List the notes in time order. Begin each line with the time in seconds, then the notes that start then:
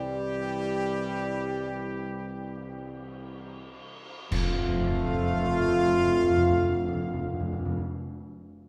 Already playing: C2 E3 G3 G4
4.30 F2 F3 A3 F4 F5, concert bass drum, crash
4.37 F2
4.44 F2
4.50 F2
4.56 F2
4.62 F2
4.69 F2
4.75 F2
4.81 F2
4.87 F2
4.94 F2
5.00 F2
5.07 F2
5.14 F2
5.20 F2
5.26 F2
5.34 F2
5.40 F2
5.46 F2
5.53 F2
5.60 F2
5.66 F2
5.72 F2
5.79 F2
5.85 F2
5.92 F2
5.98 F2
6.05 F2
6.11 F2
6.18 F2
6.24 F2
6.30 F2
6.37 F2
6.44 F2
6.50 F2
6.56 F2
6.62 F2
6.69 F2
6.75 F2
6.82 F2
6.88 F2
6.94 F2
7.01 F2
7.07 F2
7.14 F2
7.20 F2
7.26 F2
7.33 F2
7.40 F2
7.46 F2
7.53 F2
7.59 F2
7.65 F2
7.71 F2
7.78 F2